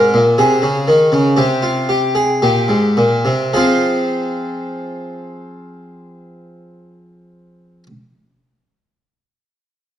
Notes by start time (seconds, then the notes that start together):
Already playing: G#2 A#4
0.14 A#2
0.38 C3 G#4
0.62 C#3
0.88 D#3
1.12 C#3
1.36 C3 G4
1.62 F4
1.89 G4
2.15 G#4
2.42 A#2 G4
2.68 G#2
2.97 A#2
3.25 C3
3.54 F3 C4 F4 G#4